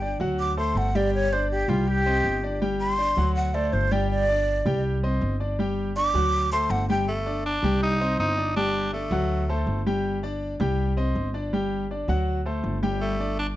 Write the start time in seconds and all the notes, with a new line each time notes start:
Already playing: G1 G5
0.02 D4 D5
0.20 D2 F#3 F#4 F#5
0.39 D6
0.57 A3 A4 C5 C6
0.75 G1 F#5
0.95 G3 G4 D5 G5
1.14 C#5
1.32 D4 C5 D5
1.51 G4
1.68 C2 G3 F4 G4 G5
1.88 G4
2.06 C4 C5 D#5
2.24 G1
2.43 D4 D5
2.62 G3 G4 G5
2.80 C6
2.98 D4 D5
3.17 D2 F#3 F#4 F#5
3.36 F#5
3.54 A3 A4 C5 D5
3.73 G1 C5
3.91 G3 G4 D5 G5
4.11 D5
4.29 D4 D5
4.66 C2 G3 G4 G5
5.03 C4 C5 D#5
5.21 G1
5.40 D4 D5
5.59 G3 G4 G5
5.96 D4 D5 D6
6.14 D2 F#3 F#4 F#5
6.52 A3 A4 C5 C6
6.70 G1 F#5
6.89 G3 G4 G5
7.08 A3
7.26 D4 D5
7.46 D4
7.63 C2 G3 G4 G5
7.83 D#4
8.01 C4 C5 D#5
8.18 G1 D#4
8.37 D4 D5
8.56 G3 D4 G4 G5
8.93 A3 D4 D5
9.11 D2 F#3 F#4 F#5
9.49 A3 A4 C5
9.67 G1
9.86 G3 G4 G5
10.23 D4 D5
10.60 C2 G3 G4 G5
10.97 C4 C5 D#5
11.15 G1
11.34 D4 D5
11.53 G3 G4 G5
11.91 D4 D5
12.08 D2 F#3 F#4 F#5
12.46 A3 A4 C5
12.64 G1
12.83 G3 G4 G5
13.01 A3
13.20 D4 D5
13.39 D4